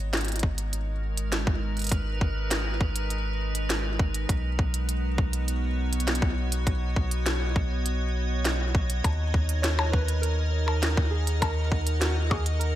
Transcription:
Already playing: G#1 G#3 B3 D#4 F#4 C#5 D#5
0.13 snare, closed hi-hat
0.17 closed hi-hat
0.21 closed hi-hat
0.25 closed hi-hat
0.28 closed hi-hat
0.32 A#4, closed hi-hat
0.36 closed hi-hat
0.39 kick, closed hi-hat
0.58 closed hi-hat
0.73 closed hi-hat
1.16 B4, closed hi-hat
1.32 snare, closed hi-hat
1.47 kick
1.77 closed hi-hat
1.79 closed hi-hat
1.82 closed hi-hat
1.84 closed hi-hat
1.87 closed hi-hat
1.89 kick, closed hi-hat
1.92 closed hi-hat
2.21 kick
2.51 snare, closed hi-hat
2.81 kick
2.96 closed hi-hat
3.10 closed hi-hat
3.55 closed hi-hat
3.70 snare, closed hi-hat
3.99 kick
4.14 closed hi-hat
4.29 B1 B3, kick, closed hi-hat
4.59 kick
4.74 closed hi-hat
4.86 F#4 D#5, closed hi-hat
5.18 kick
5.33 closed hi-hat
5.44 C#5
5.48 closed hi-hat
5.93 closed hi-hat
6.00 closed hi-hat
6.08 snare, closed hi-hat
6.15 closed hi-hat
6.22 kick
6.52 closed hi-hat
6.67 kick, closed hi-hat
6.96 kick
7.11 closed hi-hat
7.26 snare, closed hi-hat
7.56 kick
7.86 closed hi-hat
8.45 snare, closed hi-hat
8.75 kick
8.90 closed hi-hat
9.04 D#2 D#4, kick, closed hi-hat, percussion blips
9.12 A#4
9.34 kick
9.49 closed hi-hat
9.62 C#5, snare, closed hi-hat
9.79 percussion blips
9.92 B4, kick
10.08 closed hi-hat
10.22 A#4, closed hi-hat
10.66 A#4, percussion blips
10.77 F#5
10.83 snare, closed hi-hat
10.97 kick
11.11 G#4
11.27 closed hi-hat
11.41 A#4, kick, closed hi-hat, percussion blips
11.72 kick
11.87 closed hi-hat
12.00 F#4, snare, closed hi-hat
12.30 G#4, kick, percussion blips
12.46 closed hi-hat
12.59 A#4, closed hi-hat

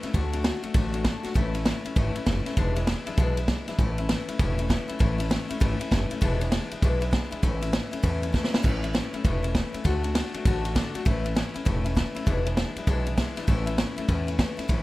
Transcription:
0.03 A3 C#4 E4, muted upright bass stroke, snare, ride
0.13 D2 D3 A3 D4 F#4, kick, ride
0.33 A3 D4 F#4, ride
0.43 D3 A3 D4 F#4, snare, ride
0.63 A3 D4 F#4, muted upright bass stroke, ride
0.74 A1 D3 A3 D4 F#4, kick, ride
0.93 A3 D4 F#4, ride
1.05 D3 A3 D4 F#4, kick, snare, ride
1.23 A3 D4 F#4, muted upright bass stroke, snare, ride
1.34 A1 A2 E3 A3 C#4 E4, kick, ride
1.54 A3 C#4 E4, ride
1.65 E3 A3 C#4 E4, snare, ride
1.85 A3 C#4 E4, muted upright bass stroke, ride
1.96 G#1 A2 E3 A3 C#4 E4, kick, ride
2.15 A3 C#4 E4, muted upright bass stroke, ride
2.26 F#1 E3 A3 C#4 E4, kick, snare, ride
2.45 A3 C#4 E4, snare, ride
2.57 E1 E2 B2 E3 G#3 D4 E4, kick, ride
2.76 E3 G#3 D4 E4, ride
2.87 E3 G#3 D4 E4, snare, ride
3.06 E3 G#3 D4 E4, muted upright bass stroke, ride
3.17 B1 E2 B2 E3 G#3 D4 E4, kick, ride
3.37 E3 G#3 D4 E4, ride
3.48 E3 G#3 D4 E4, kick, snare, ride
3.68 E3 G#3 D4 E4, muted upright bass stroke, snare, ride
3.78 A1 A2 E3 A3 C#4 E4, kick, ride
3.98 A3 C#4 E4, ride
4.09 E3 A3 C#4 E4, snare, ride
4.28 A3 C#4 E4, muted upright bass stroke, ride
4.39 E1 A2 E3 A3 C#4 E4, kick, ride
4.58 A3 C#4 E4, ride
4.69 E3 A3 C#4 E4, kick, snare, ride
4.88 A3 C#4 E4, muted upright bass stroke, ride
4.99 A1 A2 E3 A3 C#4 E4, kick, ride
5.18 A3 C#4 E4, ride
5.29 E3 A3 C#4 E4, snare, ride
5.49 A3 C#4 E4, muted upright bass stroke, ride
5.60 G#1 A2 E3 A3 C#4 E4, kick, ride
5.79 A3 C#4 E4, ride
5.91 F#1 E3 A3 C#4 E4, kick, snare, ride
6.10 A3 C#4 E4, muted upright bass stroke, ride
6.21 E1 E2 B2 E3 G#3 D4 E4, kick, ride
6.40 E3 G#3 D4 E4, ride
6.51 E3 G#3 D4 E4, snare, ride
6.71 E3 G#3 D4 E4, muted upright bass stroke, ride
6.82 B1 E2 B2 E3 G#3 D4 E4, kick, ride
7.01 E3 G#3 D4 E4, ride
7.11 E3 G#3 D4 E4, kick, snare, ride
7.31 E3 G#3 D4 E4, muted upright bass stroke, ride
7.43 A1 A2 E3 A3 C#4 E4, kick, ride
7.61 A3 C#4 E4, ride
7.72 E3 A3 C#4 E4, snare, ride
7.91 A3 C#4 E4, muted upright bass stroke, ride
8.03 E2 A2 E3 A3 C#4 E4, kick, ride
8.22 A3 C#4 E4, ride
8.32 E3 A3 C#4 E4, kick, snare
8.44 snare
8.52 A3 C#4 E4, muted upright bass stroke, snare
8.63 A1 A2 E3 A3 C#4 E4, kick, crash
8.83 A3 C#4 E4, ride
8.93 E3 A3 C#4 E4, snare, ride
9.13 A3 C#4 E4, muted upright bass stroke, ride
9.24 E1 A2 E3 A3 C#4 E4, kick, ride
9.43 A3 C#4 E4, ride
9.55 E3 A3 C#4 E4, kick, snare, ride
9.73 A3 C#4 E4, muted upright bass stroke, ride
9.84 D2 D3 A3 D4 F#4, kick, ride
10.03 A3 D4 F#4, ride
10.15 D3 A3 D4 F#4, snare, ride
10.34 A3 D4 F#4, muted upright bass stroke, ride
10.45 A1 D3 A3 D4 F#4, kick, ride
10.64 A3 D4 F#4, ride
10.75 D3 A3 D4 F#4, kick, snare, ride
10.94 A3 D4 F#4, muted upright bass stroke, ride
11.05 A1 A2 E3 A3 C#4 E4, kick, ride
11.24 A3 C#4 E4, ride
11.35 E3 A3 C#4 E4, snare, ride
11.54 A3 C#4 E4, muted upright bass stroke, ride
11.65 E1 A2 E3 A3 C#4 E4, kick, ride
11.84 A3 C#4 E4, ride
11.95 E3 A3 C#4 E4, kick, snare, ride
12.15 A3 C#4 E4, muted upright bass stroke, ride
12.26 E1 E2 B2 E3 G#3 D4 E4, kick, ride
12.45 E3 G#3 D4 E4, ride
12.57 E3 G#3 D4 E4, snare, ride
12.76 E3 G#3 D4 E4, muted upright bass stroke, ride
12.87 B1 E2 B2 E3 G#3 D4 E4, kick, ride
13.06 E3 G#3 D4 E4, ride
13.17 E3 G#3 D4 E4, kick, snare, ride
13.36 E3 G#3 D4 E4, muted upright bass stroke, snare, ride
13.47 A1 A2 E3 A3 C#4 E4, kick, ride
13.66 A3 C#4 E4, ride
13.77 E3 A3 C#4 E4, snare, ride
13.97 A3 C#4 E4, muted upright bass stroke, ride
14.08 E2 A2 E3 A3 C#4 E4, kick, ride
14.27 A3 C#4 E4, ride
14.38 E3 A3 C#4 E4, kick, snare, ride
14.57 A3 C#4 E4, muted upright bass stroke, snare, ride
14.68 A1 A2 E3 A3 C#4 E4, kick, ride

